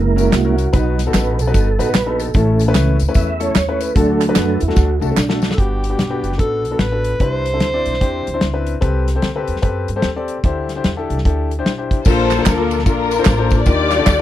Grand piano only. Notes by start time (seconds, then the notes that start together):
0.16 C#4 E4 F#4 A#4
0.44 C#4 E4 F#4 A#4
0.73 B2 B3 D#4 F#4 B4
1.07 B3 D#4 F#4 A4
1.47 B3 D#4 F#4 B4
1.79 B3 D#4 F#4 B4
2.06 B3 D#4 F#4 A4
2.35 A2 A3 C#4 E4 A4
2.68 A3 C#4 E4 B4
3.08 A3 C#4 E4 B4
3.40 A3 C#4 E4 A4
3.69 A3 C#4 E4 B4
3.96 D3 A3 D4 F#4 A4
4.28 A3 D4 F#4 B4
4.68 A3 D4 F#4 A4
5.01 A3 D4 F#4 A4
5.29 A3 D4 F#4 A4
5.57 G2 B3 D4 F#4 G4
5.90 B3 D4 F#4 G4
6.10 B3 D4 F#4 G4
6.38 B3 D4 F#4 A4
6.71 B3 D4 F#4 A4
6.92 B3 D4 F#4 A4
7.20 C3 C4 D4 E4 B4
7.53 C4 D4 E4 A4
7.74 C4 D4 E4 D5
8.01 C4 D4 E4 G4
8.34 C4 D4 E4 C5
8.54 C4 D4 E4 B4
8.81 C3 C4 G4 A4 B4
9.15 C4 G4 A4 C5
9.36 C4 G4 A4 B4
9.62 C4 G4 A4 B4
9.96 C4 G4 A4 C5
10.16 C4 G4 A4 D5
10.44 D3 D4 E4 G4 C5
10.76 D4 E4 G4 C5
10.97 D4 E4 G4 A4
11.25 D4 E4 G4 A4
11.59 D4 E4 G4 C5
11.78 D4 E4 G4 C5
12.06 A#2 A#3 D4 F4 A4 A#4
12.38 A#3 D4 F4 A4 C5
12.57 A#3 D4 F4 A4 A#4
12.86 A#3 D4 F4 A4 A#4
13.19 A#3 D4 F4 A4 C5
13.38 A#3 D4 F4 A4 C5
13.66 D#3 D4 D#4 F4 G4 A#4
13.99 D4 D#4 F4 G4 A4